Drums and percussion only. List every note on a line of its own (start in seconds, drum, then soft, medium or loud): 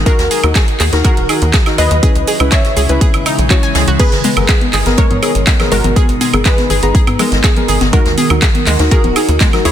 0.06 kick loud
0.06 closed hi-hat medium
0.06 closed hi-hat loud
0.06 cabasa soft
0.19 snare medium
0.19 closed hi-hat soft
0.19 cabasa soft
0.30 closed hi-hat medium
0.30 open hi-hat loud
0.30 cabasa medium
0.44 closed hi-hat soft
0.44 cabasa soft
0.44 high woodblock medium
0.55 kick loud
0.55 snare loud
0.55 clap loud
0.55 closed hi-hat medium
0.55 closed hi-hat loud
0.55 cabasa soft
0.68 closed hi-hat soft
0.80 clap medium
0.80 open hi-hat medium
0.80 cabasa medium
0.93 snare soft
0.93 closed hi-hat soft
0.93 cabasa soft
1.04 kick loud
1.04 closed hi-hat medium
1.04 closed hi-hat loud
1.04 cabasa soft
1.17 closed hi-hat soft
1.29 closed hi-hat medium
1.29 open hi-hat loud
1.29 cabasa medium
1.29 high woodblock medium
1.42 closed hi-hat soft
1.42 cabasa soft
1.54 kick loud
1.54 snare loud
1.54 clap loud
1.54 closed hi-hat loud
1.54 closed hi-hat medium
1.54 cabasa soft
1.66 snare soft
1.66 closed hi-hat soft
1.66 cabasa soft
1.66 high woodblock medium
1.78 closed hi-hat medium
1.78 open hi-hat medium
1.78 cabasa medium
1.91 closed hi-hat soft
1.91 cabasa soft
2.03 kick loud
2.03 closed hi-hat medium
2.03 closed hi-hat loud
2.03 cabasa soft
2.15 closed hi-hat soft
2.15 cabasa soft
2.27 closed hi-hat medium
2.27 open hi-hat loud
2.27 cabasa medium
2.40 closed hi-hat soft
2.40 cabasa soft
2.40 high woodblock medium
2.51 kick loud
2.51 snare loud
2.51 clap loud
2.51 closed hi-hat loud
2.51 closed hi-hat medium
2.51 cabasa soft
2.65 snare soft
2.65 closed hi-hat soft
2.65 cabasa soft
2.76 closed hi-hat medium
2.76 open hi-hat medium
2.76 cabasa medium
2.89 closed hi-hat soft
2.89 cabasa soft
3.01 kick loud
3.01 closed hi-hat medium
3.01 closed hi-hat loud
3.01 cabasa soft
3.14 closed hi-hat soft
3.14 cabasa soft
3.14 high woodblock medium
3.26 closed hi-hat medium
3.26 open hi-hat loud
3.26 cabasa medium
3.26 high woodblock medium
3.39 closed hi-hat soft
3.39 cabasa soft
3.50 kick loud
3.50 clap loud
3.50 closed hi-hat medium
3.50 closed hi-hat loud
3.50 cabasa soft
3.63 closed hi-hat soft
3.63 cabasa soft
3.75 snare loud
3.75 closed hi-hat medium
3.75 open hi-hat medium
3.75 cabasa medium
3.88 closed hi-hat soft
3.88 cabasa soft
4.00 kick loud
4.00 closed hi-hat loud
4.00 closed hi-hat medium
4.00 crash medium
4.00 cabasa soft
4.12 snare medium
4.12 closed hi-hat soft
4.12 cabasa soft
4.24 closed hi-hat medium
4.24 open hi-hat loud
4.24 high conga loud
4.24 cabasa medium
4.37 closed hi-hat soft
4.37 cabasa soft
4.37 high woodblock medium
4.48 kick loud
4.48 snare loud
4.48 clap loud
4.48 closed hi-hat medium
4.48 closed hi-hat loud
4.48 cabasa soft
4.61 closed hi-hat soft
4.61 high conga medium
4.73 clap medium
4.73 open hi-hat medium
4.73 open hi-hat loud
4.73 cabasa medium
4.86 snare soft
4.86 closed hi-hat soft
4.86 cabasa soft
4.97 kick loud
4.97 closed hi-hat medium
4.97 closed hi-hat loud
4.97 cabasa soft
5.11 closed hi-hat soft
5.11 high conga loud
5.11 low conga medium
5.23 closed hi-hat medium
5.23 open hi-hat loud
5.23 cabasa medium
5.23 high woodblock medium
5.35 closed hi-hat soft
5.35 cabasa soft
5.47 kick loud
5.47 snare loud
5.47 clap loud
5.47 closed hi-hat loud
5.47 high conga medium
5.47 cabasa soft
5.60 snare medium
5.60 closed hi-hat soft
5.60 low conga medium
5.60 cabasa soft
5.60 high woodblock medium
5.72 closed hi-hat medium
5.72 open hi-hat medium
5.72 cabasa medium
5.84 closed hi-hat soft
5.84 high conga loud
5.84 low conga medium
5.84 cabasa soft
5.96 kick loud
5.96 closed hi-hat medium
5.96 cabasa soft
6.09 closed hi-hat soft
6.09 cabasa soft
6.21 closed hi-hat medium
6.21 open hi-hat loud
6.21 high conga loud
6.21 cabasa medium
6.34 closed hi-hat soft
6.34 cabasa soft
6.34 high woodblock medium
6.45 kick loud
6.45 snare loud
6.45 clap loud
6.45 closed hi-hat medium
6.45 closed hi-hat loud
6.45 cabasa soft
6.58 snare soft
6.58 closed hi-hat soft
6.58 high conga medium
6.70 closed hi-hat medium
6.70 open hi-hat loud
6.70 cabasa medium
6.83 closed hi-hat soft
6.83 cabasa soft
6.95 kick loud
6.95 closed hi-hat medium
6.95 cabasa soft
7.07 closed hi-hat soft
7.07 high conga loud
7.07 high woodblock medium
7.19 closed hi-hat medium
7.19 open hi-hat loud
7.19 low conga medium
7.19 cabasa medium
7.19 high woodblock medium
7.32 snare soft
7.32 closed hi-hat soft
7.32 cabasa soft
7.43 kick loud
7.43 snare loud
7.43 clap loud
7.43 closed hi-hat loud
7.43 closed hi-hat medium
7.43 high conga medium
7.43 cabasa soft
7.56 closed hi-hat soft
7.56 low conga medium
7.56 cabasa soft
7.68 closed hi-hat medium
7.68 open hi-hat loud
7.68 cabasa medium
7.81 snare soft
7.81 closed hi-hat soft
7.81 high conga loud
7.81 cabasa soft
7.93 kick loud
7.93 closed hi-hat medium
7.93 cabasa soft
8.06 snare soft
8.06 closed hi-hat soft
8.06 cabasa soft
8.18 closed hi-hat medium
8.18 open hi-hat loud
8.18 high conga medium
8.18 cabasa medium
8.30 closed hi-hat soft
8.30 cabasa soft
8.30 high woodblock medium
8.42 kick loud
8.42 snare loud
8.42 clap loud
8.42 closed hi-hat medium
8.42 cabasa soft
8.55 closed hi-hat soft
8.55 high conga medium
8.66 clap medium
8.66 open hi-hat medium
8.66 open hi-hat loud
8.66 cabasa medium
8.79 snare soft
8.79 closed hi-hat soft
8.79 cabasa soft
8.91 kick loud
8.91 closed hi-hat medium
8.91 cabasa soft
9.04 closed hi-hat soft
9.04 high conga loud
9.04 low conga loud
9.16 closed hi-hat medium
9.16 open hi-hat loud
9.16 cabasa medium
9.16 high woodblock medium
9.29 closed hi-hat soft
9.29 cabasa soft
9.41 kick loud
9.41 snare loud
9.41 clap loud
9.41 closed hi-hat medium
9.41 closed hi-hat loud
9.41 high conga medium
9.41 cabasa soft
9.53 snare medium
9.53 closed hi-hat soft
9.53 low conga medium
9.53 cabasa soft
9.53 high woodblock medium
9.65 closed hi-hat medium
9.65 open hi-hat loud
9.65 cabasa medium